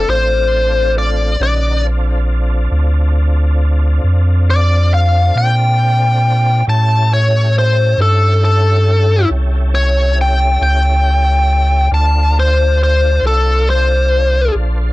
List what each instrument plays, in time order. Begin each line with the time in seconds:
Already playing: tonewheel organ A3 C4 D4 F4
0.08 sub bass A1, lead electric guitar C5
0.98 lead electric guitar D5
1.39 sub bass A#1, tonewheel organ C#3 D#4 F#4 A#4, lead electric guitar D5
1.84 tonewheel organ C4 D4 F4 A4
2.72 sub bass D2
4.04 sub bass F2
4.50 lead electric guitar D5
4.94 lead electric guitar F5
5.35 sub bass A#2, lead electric guitar G5
6.67 sub bass A2, tonewheel organ C#4 E4 G4 A4, lead electric guitar A5
7.13 lead electric guitar C#5
7.59 lead electric guitar C5
7.98 sub bass G2, lead electric guitar A4
8.45 lead electric guitar A4
9.30 sub bass C2
9.75 lead electric guitar C#5
10.21 lead electric guitar G5
10.61 sub bass C#2, lead electric guitar G5
11.91 sub bass D2, tonewheel organ D4 F4 A4 C5, lead electric guitar A5
12.40 lead electric guitar C5
12.83 lead electric guitar C5
13.23 sub bass C2
13.27 lead electric guitar A4
13.70 lead electric guitar C5
14.55 sub bass A#1